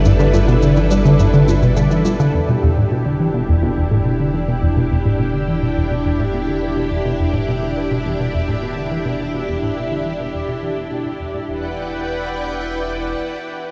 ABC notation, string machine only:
X:1
M:4/4
L:1/8
Q:1/4=105
K:Gmix
V:1 name="String machine"
[G,DEAB]8 | [K:Em] [DEG]8- | [DEG]8- | [DEG]8- |
[DEG]8 | [EBdfg]8 |]